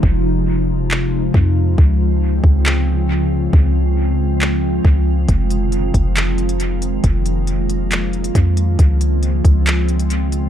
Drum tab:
HH |----------------|----------------|----------------|x-x-x-x-x-xxx-x-|
CP |--------x-------|--------x-------|--------x-------|--------x-------|
BD |o-----------o---|o-----o---------|o-----------o---|o-----o---------|

HH |x-x-x-x-x-xxx-x-|x-x-x-x-x-xxx-x-|
CP |--------x-------|--------x-------|
BD |o-----------o---|o-----o---------|